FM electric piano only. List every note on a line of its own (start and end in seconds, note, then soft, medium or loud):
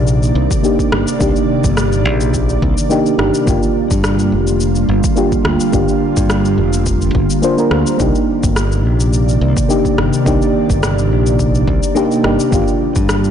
0.00 0.60 A#3 medium
0.00 0.60 D4 medium
0.00 0.61 D#4 medium
0.00 0.62 G4 medium
0.63 0.76 A#3 medium
0.63 0.76 D4 medium
0.63 0.76 D#4 medium
0.63 0.77 G4 medium
1.19 1.28 A#3 medium
1.19 1.28 D4 medium
1.19 1.28 D#4 medium
1.19 1.29 G4 loud
2.90 3.15 A#3 medium
2.90 3.15 D4 medium
2.90 3.16 D#4 medium
2.90 3.16 G4 loud
3.17 3.43 A#3 medium
3.17 3.44 D4 medium
3.17 3.44 D#4 medium
3.17 3.44 G4 medium
3.45 5.13 A#3 medium
3.45 5.13 D4 medium
3.45 5.14 F4 medium
3.49 5.15 G4 medium
5.16 5.29 A#3 medium
5.16 5.29 D4 medium
5.16 5.29 F4 medium
5.16 5.30 G4 medium
5.72 5.81 A#3 medium
5.72 5.81 D4 medium
5.72 5.81 F4 medium
5.72 5.82 G4 medium
7.42 7.50 A#3 medium
7.42 7.51 D4 medium
7.42 7.51 F4 medium
7.42 7.51 C5 medium
7.57 7.64 A#3 medium
7.57 7.65 D4 medium
7.57 7.65 F4 medium
7.57 7.65 A#4 medium
7.97 9.65 A#3 medium
7.97 9.66 D4 medium
7.97 9.67 D#4 medium
8.02 9.67 G4 medium
9.68 9.81 A#3 medium
9.68 9.82 D4 medium
9.68 9.82 D#4 medium
9.68 9.82 G4 medium
10.25 10.33 A#3 medium
10.25 10.34 D4 medium
10.25 10.34 D#4 medium
10.25 10.35 G4 loud
11.95 12.21 A#3 medium
11.95 12.21 D4 medium
11.95 12.21 D#4 medium
11.95 12.22 G4 loud
12.23 12.49 A#3 medium
12.23 12.49 D4 medium
12.23 12.50 D#4 medium
12.23 12.50 G4 medium
12.51 13.31 A#3 medium
12.51 13.31 D4 medium
12.51 13.31 F4 medium
12.51 13.31 G4 medium